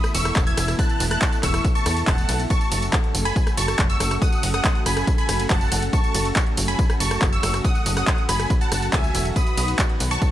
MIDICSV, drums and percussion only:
0, 0, Header, 1, 2, 480
1, 0, Start_track
1, 0, Tempo, 428571
1, 884, Time_signature, 4, 2, 24, 8
1, 11551, End_track
2, 0, Start_track
2, 0, Title_t, "Drums"
2, 43, Note_on_c, 9, 37, 81
2, 43, Note_on_c, 9, 42, 28
2, 43, Note_on_c, 9, 54, 32
2, 155, Note_off_c, 9, 37, 0
2, 155, Note_off_c, 9, 42, 0
2, 155, Note_off_c, 9, 54, 0
2, 163, Note_on_c, 9, 46, 104
2, 163, Note_on_c, 9, 51, 86
2, 163, Note_on_c, 9, 54, 74
2, 275, Note_off_c, 9, 46, 0
2, 275, Note_off_c, 9, 51, 0
2, 275, Note_off_c, 9, 54, 0
2, 283, Note_on_c, 9, 37, 85
2, 283, Note_on_c, 9, 42, 58
2, 283, Note_on_c, 9, 54, 34
2, 395, Note_off_c, 9, 37, 0
2, 395, Note_off_c, 9, 42, 0
2, 395, Note_off_c, 9, 54, 0
2, 403, Note_on_c, 9, 36, 123
2, 403, Note_on_c, 9, 39, 113
2, 403, Note_on_c, 9, 42, 53
2, 403, Note_on_c, 9, 54, 43
2, 515, Note_off_c, 9, 36, 0
2, 515, Note_off_c, 9, 39, 0
2, 515, Note_off_c, 9, 42, 0
2, 515, Note_off_c, 9, 54, 0
2, 524, Note_on_c, 9, 42, 29
2, 524, Note_on_c, 9, 54, 33
2, 636, Note_off_c, 9, 42, 0
2, 636, Note_off_c, 9, 54, 0
2, 644, Note_on_c, 9, 37, 79
2, 644, Note_on_c, 9, 46, 109
2, 644, Note_on_c, 9, 51, 90
2, 644, Note_on_c, 9, 54, 78
2, 756, Note_off_c, 9, 37, 0
2, 756, Note_off_c, 9, 46, 0
2, 756, Note_off_c, 9, 51, 0
2, 756, Note_off_c, 9, 54, 0
2, 764, Note_on_c, 9, 37, 62
2, 764, Note_on_c, 9, 42, 57
2, 764, Note_on_c, 9, 54, 33
2, 876, Note_off_c, 9, 37, 0
2, 876, Note_off_c, 9, 42, 0
2, 876, Note_off_c, 9, 54, 0
2, 883, Note_on_c, 9, 36, 113
2, 884, Note_on_c, 9, 42, 62
2, 884, Note_on_c, 9, 54, 45
2, 995, Note_off_c, 9, 36, 0
2, 996, Note_off_c, 9, 42, 0
2, 996, Note_off_c, 9, 54, 0
2, 1003, Note_on_c, 9, 42, 26
2, 1003, Note_on_c, 9, 54, 29
2, 1115, Note_off_c, 9, 42, 0
2, 1115, Note_off_c, 9, 54, 0
2, 1123, Note_on_c, 9, 46, 109
2, 1123, Note_on_c, 9, 51, 83
2, 1123, Note_on_c, 9, 54, 75
2, 1235, Note_off_c, 9, 46, 0
2, 1235, Note_off_c, 9, 51, 0
2, 1235, Note_off_c, 9, 54, 0
2, 1244, Note_on_c, 9, 37, 74
2, 1244, Note_on_c, 9, 42, 56
2, 1356, Note_off_c, 9, 37, 0
2, 1356, Note_off_c, 9, 42, 0
2, 1363, Note_on_c, 9, 36, 119
2, 1363, Note_on_c, 9, 39, 127
2, 1363, Note_on_c, 9, 42, 55
2, 1363, Note_on_c, 9, 54, 41
2, 1475, Note_off_c, 9, 36, 0
2, 1475, Note_off_c, 9, 39, 0
2, 1475, Note_off_c, 9, 42, 0
2, 1475, Note_off_c, 9, 54, 0
2, 1483, Note_on_c, 9, 42, 29
2, 1483, Note_on_c, 9, 54, 29
2, 1595, Note_off_c, 9, 42, 0
2, 1595, Note_off_c, 9, 54, 0
2, 1603, Note_on_c, 9, 36, 61
2, 1603, Note_on_c, 9, 37, 65
2, 1603, Note_on_c, 9, 39, 40
2, 1603, Note_on_c, 9, 46, 105
2, 1603, Note_on_c, 9, 51, 84
2, 1603, Note_on_c, 9, 54, 75
2, 1715, Note_off_c, 9, 36, 0
2, 1715, Note_off_c, 9, 37, 0
2, 1715, Note_off_c, 9, 39, 0
2, 1715, Note_off_c, 9, 46, 0
2, 1715, Note_off_c, 9, 51, 0
2, 1715, Note_off_c, 9, 54, 0
2, 1723, Note_on_c, 9, 37, 73
2, 1723, Note_on_c, 9, 42, 57
2, 1723, Note_on_c, 9, 54, 32
2, 1835, Note_off_c, 9, 37, 0
2, 1835, Note_off_c, 9, 42, 0
2, 1835, Note_off_c, 9, 54, 0
2, 1843, Note_on_c, 9, 36, 121
2, 1843, Note_on_c, 9, 42, 55
2, 1843, Note_on_c, 9, 54, 42
2, 1955, Note_off_c, 9, 36, 0
2, 1955, Note_off_c, 9, 42, 0
2, 1955, Note_off_c, 9, 54, 0
2, 1963, Note_on_c, 9, 42, 28
2, 1963, Note_on_c, 9, 54, 28
2, 2075, Note_off_c, 9, 42, 0
2, 2075, Note_off_c, 9, 54, 0
2, 2083, Note_on_c, 9, 37, 73
2, 2083, Note_on_c, 9, 46, 99
2, 2083, Note_on_c, 9, 51, 83
2, 2083, Note_on_c, 9, 54, 74
2, 2195, Note_off_c, 9, 37, 0
2, 2195, Note_off_c, 9, 46, 0
2, 2195, Note_off_c, 9, 51, 0
2, 2195, Note_off_c, 9, 54, 0
2, 2203, Note_on_c, 9, 42, 61
2, 2203, Note_on_c, 9, 54, 32
2, 2315, Note_off_c, 9, 42, 0
2, 2315, Note_off_c, 9, 54, 0
2, 2323, Note_on_c, 9, 36, 124
2, 2323, Note_on_c, 9, 39, 118
2, 2323, Note_on_c, 9, 46, 58
2, 2323, Note_on_c, 9, 54, 38
2, 2435, Note_off_c, 9, 36, 0
2, 2435, Note_off_c, 9, 39, 0
2, 2435, Note_off_c, 9, 46, 0
2, 2435, Note_off_c, 9, 54, 0
2, 2442, Note_on_c, 9, 42, 31
2, 2442, Note_on_c, 9, 54, 32
2, 2554, Note_off_c, 9, 42, 0
2, 2554, Note_off_c, 9, 54, 0
2, 2562, Note_on_c, 9, 46, 103
2, 2562, Note_on_c, 9, 51, 89
2, 2562, Note_on_c, 9, 54, 73
2, 2674, Note_off_c, 9, 46, 0
2, 2674, Note_off_c, 9, 51, 0
2, 2674, Note_off_c, 9, 54, 0
2, 2683, Note_on_c, 9, 42, 54
2, 2683, Note_on_c, 9, 54, 32
2, 2795, Note_off_c, 9, 42, 0
2, 2795, Note_off_c, 9, 54, 0
2, 2802, Note_on_c, 9, 42, 59
2, 2802, Note_on_c, 9, 54, 42
2, 2803, Note_on_c, 9, 36, 123
2, 2914, Note_off_c, 9, 42, 0
2, 2914, Note_off_c, 9, 54, 0
2, 2915, Note_off_c, 9, 36, 0
2, 2922, Note_on_c, 9, 42, 26
2, 2922, Note_on_c, 9, 54, 27
2, 3034, Note_off_c, 9, 42, 0
2, 3034, Note_off_c, 9, 54, 0
2, 3042, Note_on_c, 9, 46, 110
2, 3042, Note_on_c, 9, 51, 80
2, 3042, Note_on_c, 9, 54, 77
2, 3154, Note_off_c, 9, 46, 0
2, 3154, Note_off_c, 9, 51, 0
2, 3154, Note_off_c, 9, 54, 0
2, 3163, Note_on_c, 9, 42, 56
2, 3163, Note_on_c, 9, 54, 30
2, 3275, Note_off_c, 9, 42, 0
2, 3275, Note_off_c, 9, 54, 0
2, 3283, Note_on_c, 9, 36, 122
2, 3283, Note_on_c, 9, 39, 127
2, 3283, Note_on_c, 9, 42, 55
2, 3283, Note_on_c, 9, 54, 40
2, 3395, Note_off_c, 9, 36, 0
2, 3395, Note_off_c, 9, 39, 0
2, 3395, Note_off_c, 9, 42, 0
2, 3395, Note_off_c, 9, 54, 0
2, 3404, Note_on_c, 9, 42, 29
2, 3516, Note_off_c, 9, 42, 0
2, 3524, Note_on_c, 9, 46, 116
2, 3524, Note_on_c, 9, 51, 84
2, 3524, Note_on_c, 9, 54, 74
2, 3636, Note_off_c, 9, 46, 0
2, 3636, Note_off_c, 9, 51, 0
2, 3636, Note_off_c, 9, 54, 0
2, 3644, Note_on_c, 9, 42, 54
2, 3644, Note_on_c, 9, 54, 30
2, 3756, Note_off_c, 9, 42, 0
2, 3756, Note_off_c, 9, 54, 0
2, 3763, Note_on_c, 9, 36, 121
2, 3764, Note_on_c, 9, 42, 52
2, 3764, Note_on_c, 9, 54, 41
2, 3875, Note_off_c, 9, 36, 0
2, 3876, Note_off_c, 9, 42, 0
2, 3876, Note_off_c, 9, 54, 0
2, 3884, Note_on_c, 9, 37, 74
2, 3884, Note_on_c, 9, 42, 28
2, 3884, Note_on_c, 9, 54, 29
2, 3996, Note_off_c, 9, 37, 0
2, 3996, Note_off_c, 9, 42, 0
2, 3996, Note_off_c, 9, 54, 0
2, 4004, Note_on_c, 9, 46, 112
2, 4004, Note_on_c, 9, 51, 82
2, 4004, Note_on_c, 9, 54, 73
2, 4116, Note_off_c, 9, 46, 0
2, 4116, Note_off_c, 9, 51, 0
2, 4116, Note_off_c, 9, 54, 0
2, 4124, Note_on_c, 9, 37, 79
2, 4124, Note_on_c, 9, 42, 59
2, 4124, Note_on_c, 9, 54, 31
2, 4236, Note_off_c, 9, 37, 0
2, 4236, Note_off_c, 9, 42, 0
2, 4236, Note_off_c, 9, 54, 0
2, 4243, Note_on_c, 9, 36, 122
2, 4244, Note_on_c, 9, 39, 121
2, 4244, Note_on_c, 9, 42, 57
2, 4244, Note_on_c, 9, 54, 38
2, 4355, Note_off_c, 9, 36, 0
2, 4356, Note_off_c, 9, 39, 0
2, 4356, Note_off_c, 9, 42, 0
2, 4356, Note_off_c, 9, 54, 0
2, 4364, Note_on_c, 9, 42, 31
2, 4364, Note_on_c, 9, 54, 31
2, 4476, Note_off_c, 9, 42, 0
2, 4476, Note_off_c, 9, 54, 0
2, 4484, Note_on_c, 9, 37, 80
2, 4484, Note_on_c, 9, 46, 116
2, 4484, Note_on_c, 9, 51, 80
2, 4484, Note_on_c, 9, 54, 70
2, 4596, Note_off_c, 9, 37, 0
2, 4596, Note_off_c, 9, 46, 0
2, 4596, Note_off_c, 9, 51, 0
2, 4596, Note_off_c, 9, 54, 0
2, 4605, Note_on_c, 9, 37, 63
2, 4605, Note_on_c, 9, 42, 58
2, 4605, Note_on_c, 9, 54, 32
2, 4717, Note_off_c, 9, 37, 0
2, 4717, Note_off_c, 9, 42, 0
2, 4717, Note_off_c, 9, 54, 0
2, 4723, Note_on_c, 9, 36, 127
2, 4724, Note_on_c, 9, 42, 57
2, 4724, Note_on_c, 9, 54, 43
2, 4835, Note_off_c, 9, 36, 0
2, 4836, Note_off_c, 9, 42, 0
2, 4836, Note_off_c, 9, 54, 0
2, 4844, Note_on_c, 9, 42, 27
2, 4844, Note_on_c, 9, 54, 27
2, 4956, Note_off_c, 9, 42, 0
2, 4956, Note_off_c, 9, 54, 0
2, 4964, Note_on_c, 9, 46, 114
2, 4964, Note_on_c, 9, 51, 81
2, 4964, Note_on_c, 9, 54, 73
2, 5076, Note_off_c, 9, 46, 0
2, 5076, Note_off_c, 9, 51, 0
2, 5076, Note_off_c, 9, 54, 0
2, 5084, Note_on_c, 9, 37, 78
2, 5084, Note_on_c, 9, 42, 53
2, 5084, Note_on_c, 9, 54, 31
2, 5196, Note_off_c, 9, 37, 0
2, 5196, Note_off_c, 9, 42, 0
2, 5196, Note_off_c, 9, 54, 0
2, 5203, Note_on_c, 9, 36, 121
2, 5204, Note_on_c, 9, 39, 126
2, 5204, Note_on_c, 9, 42, 57
2, 5204, Note_on_c, 9, 54, 39
2, 5315, Note_off_c, 9, 36, 0
2, 5316, Note_off_c, 9, 39, 0
2, 5316, Note_off_c, 9, 42, 0
2, 5316, Note_off_c, 9, 54, 0
2, 5324, Note_on_c, 9, 42, 27
2, 5436, Note_off_c, 9, 42, 0
2, 5444, Note_on_c, 9, 37, 65
2, 5444, Note_on_c, 9, 46, 121
2, 5444, Note_on_c, 9, 51, 78
2, 5444, Note_on_c, 9, 54, 76
2, 5556, Note_off_c, 9, 37, 0
2, 5556, Note_off_c, 9, 46, 0
2, 5556, Note_off_c, 9, 51, 0
2, 5556, Note_off_c, 9, 54, 0
2, 5564, Note_on_c, 9, 37, 78
2, 5564, Note_on_c, 9, 42, 55
2, 5564, Note_on_c, 9, 54, 28
2, 5676, Note_off_c, 9, 37, 0
2, 5676, Note_off_c, 9, 42, 0
2, 5676, Note_off_c, 9, 54, 0
2, 5683, Note_on_c, 9, 36, 126
2, 5684, Note_on_c, 9, 42, 55
2, 5684, Note_on_c, 9, 54, 39
2, 5795, Note_off_c, 9, 36, 0
2, 5796, Note_off_c, 9, 42, 0
2, 5796, Note_off_c, 9, 54, 0
2, 5803, Note_on_c, 9, 42, 26
2, 5803, Note_on_c, 9, 54, 28
2, 5915, Note_off_c, 9, 42, 0
2, 5915, Note_off_c, 9, 54, 0
2, 5923, Note_on_c, 9, 37, 79
2, 5923, Note_on_c, 9, 46, 111
2, 5923, Note_on_c, 9, 51, 78
2, 5923, Note_on_c, 9, 54, 71
2, 6035, Note_off_c, 9, 37, 0
2, 6035, Note_off_c, 9, 46, 0
2, 6035, Note_off_c, 9, 51, 0
2, 6035, Note_off_c, 9, 54, 0
2, 6043, Note_on_c, 9, 42, 58
2, 6043, Note_on_c, 9, 54, 30
2, 6155, Note_off_c, 9, 42, 0
2, 6155, Note_off_c, 9, 54, 0
2, 6163, Note_on_c, 9, 36, 126
2, 6163, Note_on_c, 9, 39, 120
2, 6163, Note_on_c, 9, 46, 61
2, 6163, Note_on_c, 9, 54, 39
2, 6275, Note_off_c, 9, 36, 0
2, 6275, Note_off_c, 9, 39, 0
2, 6275, Note_off_c, 9, 46, 0
2, 6275, Note_off_c, 9, 54, 0
2, 6283, Note_on_c, 9, 42, 29
2, 6283, Note_on_c, 9, 54, 32
2, 6395, Note_off_c, 9, 42, 0
2, 6395, Note_off_c, 9, 54, 0
2, 6403, Note_on_c, 9, 46, 114
2, 6403, Note_on_c, 9, 51, 79
2, 6403, Note_on_c, 9, 54, 75
2, 6515, Note_off_c, 9, 46, 0
2, 6515, Note_off_c, 9, 51, 0
2, 6515, Note_off_c, 9, 54, 0
2, 6523, Note_on_c, 9, 42, 57
2, 6523, Note_on_c, 9, 54, 30
2, 6635, Note_off_c, 9, 42, 0
2, 6635, Note_off_c, 9, 54, 0
2, 6643, Note_on_c, 9, 36, 126
2, 6644, Note_on_c, 9, 42, 54
2, 6644, Note_on_c, 9, 54, 43
2, 6755, Note_off_c, 9, 36, 0
2, 6756, Note_off_c, 9, 42, 0
2, 6756, Note_off_c, 9, 54, 0
2, 6763, Note_on_c, 9, 42, 23
2, 6763, Note_on_c, 9, 54, 27
2, 6875, Note_off_c, 9, 42, 0
2, 6875, Note_off_c, 9, 54, 0
2, 6883, Note_on_c, 9, 46, 112
2, 6883, Note_on_c, 9, 51, 83
2, 6883, Note_on_c, 9, 54, 79
2, 6995, Note_off_c, 9, 46, 0
2, 6995, Note_off_c, 9, 51, 0
2, 6995, Note_off_c, 9, 54, 0
2, 7003, Note_on_c, 9, 42, 55
2, 7003, Note_on_c, 9, 54, 31
2, 7115, Note_off_c, 9, 42, 0
2, 7115, Note_off_c, 9, 54, 0
2, 7123, Note_on_c, 9, 36, 121
2, 7123, Note_on_c, 9, 39, 122
2, 7123, Note_on_c, 9, 42, 52
2, 7123, Note_on_c, 9, 54, 41
2, 7235, Note_off_c, 9, 36, 0
2, 7235, Note_off_c, 9, 39, 0
2, 7235, Note_off_c, 9, 42, 0
2, 7235, Note_off_c, 9, 54, 0
2, 7243, Note_on_c, 9, 42, 26
2, 7355, Note_off_c, 9, 42, 0
2, 7363, Note_on_c, 9, 46, 119
2, 7363, Note_on_c, 9, 51, 82
2, 7363, Note_on_c, 9, 54, 77
2, 7475, Note_off_c, 9, 46, 0
2, 7475, Note_off_c, 9, 51, 0
2, 7475, Note_off_c, 9, 54, 0
2, 7484, Note_on_c, 9, 42, 48
2, 7484, Note_on_c, 9, 54, 30
2, 7596, Note_off_c, 9, 42, 0
2, 7596, Note_off_c, 9, 54, 0
2, 7603, Note_on_c, 9, 36, 126
2, 7603, Note_on_c, 9, 42, 52
2, 7603, Note_on_c, 9, 54, 40
2, 7715, Note_off_c, 9, 36, 0
2, 7715, Note_off_c, 9, 42, 0
2, 7715, Note_off_c, 9, 54, 0
2, 7724, Note_on_c, 9, 37, 85
2, 7724, Note_on_c, 9, 42, 27
2, 7724, Note_on_c, 9, 54, 30
2, 7836, Note_off_c, 9, 37, 0
2, 7836, Note_off_c, 9, 42, 0
2, 7836, Note_off_c, 9, 54, 0
2, 7844, Note_on_c, 9, 46, 121
2, 7844, Note_on_c, 9, 51, 77
2, 7844, Note_on_c, 9, 54, 74
2, 7956, Note_off_c, 9, 46, 0
2, 7956, Note_off_c, 9, 51, 0
2, 7956, Note_off_c, 9, 54, 0
2, 7964, Note_on_c, 9, 37, 84
2, 7964, Note_on_c, 9, 42, 55
2, 7964, Note_on_c, 9, 54, 34
2, 8076, Note_off_c, 9, 37, 0
2, 8076, Note_off_c, 9, 42, 0
2, 8076, Note_off_c, 9, 54, 0
2, 8083, Note_on_c, 9, 36, 127
2, 8083, Note_on_c, 9, 39, 119
2, 8083, Note_on_c, 9, 42, 49
2, 8083, Note_on_c, 9, 54, 40
2, 8195, Note_off_c, 9, 36, 0
2, 8195, Note_off_c, 9, 39, 0
2, 8195, Note_off_c, 9, 42, 0
2, 8195, Note_off_c, 9, 54, 0
2, 8204, Note_on_c, 9, 42, 29
2, 8204, Note_on_c, 9, 54, 32
2, 8316, Note_off_c, 9, 42, 0
2, 8316, Note_off_c, 9, 54, 0
2, 8324, Note_on_c, 9, 37, 87
2, 8324, Note_on_c, 9, 46, 110
2, 8324, Note_on_c, 9, 51, 80
2, 8324, Note_on_c, 9, 54, 76
2, 8436, Note_off_c, 9, 37, 0
2, 8436, Note_off_c, 9, 46, 0
2, 8436, Note_off_c, 9, 51, 0
2, 8436, Note_off_c, 9, 54, 0
2, 8444, Note_on_c, 9, 37, 64
2, 8444, Note_on_c, 9, 42, 55
2, 8444, Note_on_c, 9, 54, 31
2, 8556, Note_off_c, 9, 37, 0
2, 8556, Note_off_c, 9, 42, 0
2, 8556, Note_off_c, 9, 54, 0
2, 8563, Note_on_c, 9, 36, 119
2, 8563, Note_on_c, 9, 42, 53
2, 8563, Note_on_c, 9, 54, 46
2, 8675, Note_off_c, 9, 36, 0
2, 8675, Note_off_c, 9, 42, 0
2, 8675, Note_off_c, 9, 54, 0
2, 8683, Note_on_c, 9, 42, 24
2, 8683, Note_on_c, 9, 54, 28
2, 8795, Note_off_c, 9, 42, 0
2, 8795, Note_off_c, 9, 54, 0
2, 8803, Note_on_c, 9, 46, 120
2, 8803, Note_on_c, 9, 51, 80
2, 8803, Note_on_c, 9, 54, 79
2, 8915, Note_off_c, 9, 46, 0
2, 8915, Note_off_c, 9, 51, 0
2, 8915, Note_off_c, 9, 54, 0
2, 8923, Note_on_c, 9, 37, 84
2, 8923, Note_on_c, 9, 42, 53
2, 8923, Note_on_c, 9, 54, 34
2, 9035, Note_off_c, 9, 37, 0
2, 9035, Note_off_c, 9, 42, 0
2, 9035, Note_off_c, 9, 54, 0
2, 9043, Note_on_c, 9, 36, 124
2, 9043, Note_on_c, 9, 39, 125
2, 9043, Note_on_c, 9, 42, 54
2, 9043, Note_on_c, 9, 54, 44
2, 9155, Note_off_c, 9, 36, 0
2, 9155, Note_off_c, 9, 39, 0
2, 9155, Note_off_c, 9, 42, 0
2, 9155, Note_off_c, 9, 54, 0
2, 9163, Note_on_c, 9, 42, 26
2, 9275, Note_off_c, 9, 42, 0
2, 9283, Note_on_c, 9, 37, 68
2, 9283, Note_on_c, 9, 46, 118
2, 9283, Note_on_c, 9, 51, 81
2, 9283, Note_on_c, 9, 54, 79
2, 9395, Note_off_c, 9, 37, 0
2, 9395, Note_off_c, 9, 46, 0
2, 9395, Note_off_c, 9, 51, 0
2, 9395, Note_off_c, 9, 54, 0
2, 9403, Note_on_c, 9, 37, 79
2, 9403, Note_on_c, 9, 42, 49
2, 9403, Note_on_c, 9, 54, 33
2, 9515, Note_off_c, 9, 37, 0
2, 9515, Note_off_c, 9, 42, 0
2, 9515, Note_off_c, 9, 54, 0
2, 9523, Note_on_c, 9, 36, 120
2, 9523, Note_on_c, 9, 42, 53
2, 9523, Note_on_c, 9, 54, 44
2, 9635, Note_off_c, 9, 36, 0
2, 9635, Note_off_c, 9, 42, 0
2, 9635, Note_off_c, 9, 54, 0
2, 9644, Note_on_c, 9, 42, 26
2, 9644, Note_on_c, 9, 54, 31
2, 9756, Note_off_c, 9, 42, 0
2, 9756, Note_off_c, 9, 54, 0
2, 9763, Note_on_c, 9, 37, 89
2, 9763, Note_on_c, 9, 46, 110
2, 9763, Note_on_c, 9, 51, 79
2, 9763, Note_on_c, 9, 54, 80
2, 9875, Note_off_c, 9, 37, 0
2, 9875, Note_off_c, 9, 46, 0
2, 9875, Note_off_c, 9, 51, 0
2, 9875, Note_off_c, 9, 54, 0
2, 9884, Note_on_c, 9, 42, 51
2, 9884, Note_on_c, 9, 54, 33
2, 9996, Note_off_c, 9, 42, 0
2, 9996, Note_off_c, 9, 54, 0
2, 10003, Note_on_c, 9, 36, 127
2, 10004, Note_on_c, 9, 39, 120
2, 10004, Note_on_c, 9, 46, 61
2, 10004, Note_on_c, 9, 54, 41
2, 10115, Note_off_c, 9, 36, 0
2, 10116, Note_off_c, 9, 39, 0
2, 10116, Note_off_c, 9, 46, 0
2, 10116, Note_off_c, 9, 54, 0
2, 10124, Note_on_c, 9, 42, 27
2, 10124, Note_on_c, 9, 54, 33
2, 10236, Note_off_c, 9, 42, 0
2, 10236, Note_off_c, 9, 54, 0
2, 10244, Note_on_c, 9, 46, 111
2, 10244, Note_on_c, 9, 51, 77
2, 10244, Note_on_c, 9, 54, 79
2, 10356, Note_off_c, 9, 46, 0
2, 10356, Note_off_c, 9, 51, 0
2, 10356, Note_off_c, 9, 54, 0
2, 10364, Note_on_c, 9, 42, 50
2, 10364, Note_on_c, 9, 54, 33
2, 10476, Note_off_c, 9, 42, 0
2, 10476, Note_off_c, 9, 54, 0
2, 10483, Note_on_c, 9, 36, 112
2, 10484, Note_on_c, 9, 42, 56
2, 10484, Note_on_c, 9, 54, 48
2, 10595, Note_off_c, 9, 36, 0
2, 10596, Note_off_c, 9, 42, 0
2, 10596, Note_off_c, 9, 54, 0
2, 10604, Note_on_c, 9, 42, 24
2, 10604, Note_on_c, 9, 54, 31
2, 10716, Note_off_c, 9, 42, 0
2, 10716, Note_off_c, 9, 54, 0
2, 10724, Note_on_c, 9, 46, 116
2, 10724, Note_on_c, 9, 51, 84
2, 10724, Note_on_c, 9, 54, 80
2, 10836, Note_off_c, 9, 46, 0
2, 10836, Note_off_c, 9, 51, 0
2, 10836, Note_off_c, 9, 54, 0
2, 10844, Note_on_c, 9, 42, 53
2, 10844, Note_on_c, 9, 54, 35
2, 10956, Note_off_c, 9, 42, 0
2, 10956, Note_off_c, 9, 54, 0
2, 10963, Note_on_c, 9, 36, 121
2, 10964, Note_on_c, 9, 39, 121
2, 10964, Note_on_c, 9, 42, 50
2, 10964, Note_on_c, 9, 54, 45
2, 11075, Note_off_c, 9, 36, 0
2, 11076, Note_off_c, 9, 39, 0
2, 11076, Note_off_c, 9, 42, 0
2, 11076, Note_off_c, 9, 54, 0
2, 11083, Note_on_c, 9, 42, 26
2, 11195, Note_off_c, 9, 42, 0
2, 11203, Note_on_c, 9, 46, 112
2, 11203, Note_on_c, 9, 51, 78
2, 11203, Note_on_c, 9, 54, 84
2, 11315, Note_off_c, 9, 46, 0
2, 11315, Note_off_c, 9, 51, 0
2, 11315, Note_off_c, 9, 54, 0
2, 11323, Note_on_c, 9, 42, 52
2, 11323, Note_on_c, 9, 54, 34
2, 11435, Note_off_c, 9, 42, 0
2, 11435, Note_off_c, 9, 54, 0
2, 11443, Note_on_c, 9, 36, 122
2, 11443, Note_on_c, 9, 42, 50
2, 11443, Note_on_c, 9, 54, 43
2, 11551, Note_off_c, 9, 36, 0
2, 11551, Note_off_c, 9, 42, 0
2, 11551, Note_off_c, 9, 54, 0
2, 11551, End_track
0, 0, End_of_file